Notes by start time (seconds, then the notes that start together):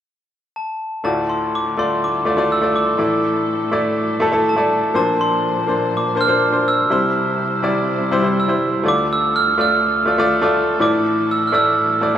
0.56 A5
1.04 D2 A2 D3 A3 F4 A4 D5 A5
1.30 C6
1.55 D6
1.77 A3 F4 D5 C6
2.04 D6
2.25 A3 F4 D5
2.37 A3 F4 D5
2.52 E6
2.61 A3 F4 D5
2.76 D6
2.98 A2 E3 A3 D4 E4 D5
3.71 A3 E4 D5
4.20 A3 E4 A4
4.32 A3 E4 A4
4.49 A5
4.56 A3 E4 D5
4.94 A#2 F3 A#3 D4 C5 A5
5.21 C6
5.67 A#3 D4 C5
5.97 D6
6.15 A#3 D4 C5
6.21 F6
6.27 A#3 D4 C5
6.52 A#3 D4 C5
6.68 E6
6.90 C3 G3 E4 C5
7.63 G3 E4 D5
8.12 G3 E4 C5
8.22 G3 E4 C5
8.40 E6
8.48 G3 E4 C5
8.83 D2 D3 A3 F4 A4 D5
8.88 D6
9.13 E6
9.36 F6
9.58 A3 F4 D5 F6
10.05 A3 F4 D5
10.18 A3 F4 D5
10.42 A3 F4 D5
10.80 A2 E3 A3 D4 E4 D5 D6
11.31 E6
11.47 F6
11.52 A3 E4 D5 E6
12.01 A3 E4 D5
12.15 A3